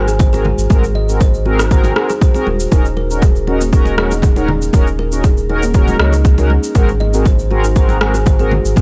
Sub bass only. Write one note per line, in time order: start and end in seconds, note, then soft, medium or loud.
0.00 0.54 G#1 loud
0.58 0.68 G#1 loud
0.70 1.92 G#1 medium
2.47 2.67 D#1 medium
2.72 4.70 D#1 medium
4.74 5.96 D#1 medium
5.99 6.59 C#2 medium
6.75 8.60 G#1 loud
8.65 8.74 G#1 loud
8.77 8.81 G#1 medium